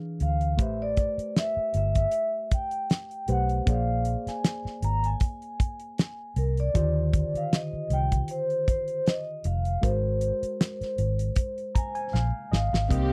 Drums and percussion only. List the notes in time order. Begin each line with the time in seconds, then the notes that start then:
0.20 closed hi-hat
0.41 closed hi-hat
0.59 kick, closed hi-hat
0.97 kick, closed hi-hat
1.19 closed hi-hat
1.36 snare, closed hi-hat
1.74 closed hi-hat
1.95 kick, closed hi-hat
2.11 closed hi-hat
2.51 kick, closed hi-hat
2.71 closed hi-hat
2.90 snare, closed hi-hat
3.11 closed hi-hat
3.28 closed hi-hat
3.49 closed hi-hat
3.67 kick, closed hi-hat
4.05 closed hi-hat
4.27 snare, closed hi-hat
4.44 snare, closed hi-hat
4.66 snare
4.82 closed hi-hat
5.04 closed hi-hat
5.20 kick, closed hi-hat
5.42 closed hi-hat
5.60 kick, closed hi-hat
5.80 closed hi-hat
5.98 snare, closed hi-hat
6.36 closed hi-hat
6.57 closed hi-hat
6.75 kick, closed hi-hat
7.13 kick, closed hi-hat
7.35 closed hi-hat
7.53 snare, closed hi-hat
7.90 closed hi-hat
8.12 kick, closed hi-hat
8.28 closed hi-hat
8.50 closed hi-hat
8.68 kick, closed hi-hat
8.88 closed hi-hat
9.07 snare, closed hi-hat
9.44 closed hi-hat
9.65 closed hi-hat
9.83 kick, closed hi-hat
10.21 closed hi-hat
10.43 closed hi-hat
10.61 snare, closed hi-hat
10.81 snare, closed hi-hat
10.98 closed hi-hat
11.19 closed hi-hat
11.36 kick, closed hi-hat
11.58 closed hi-hat
11.75 kick, closed hi-hat
11.95 closed hi-hat
12.15 snare
12.53 snare
12.74 snare
12.91 kick, closed hi-hat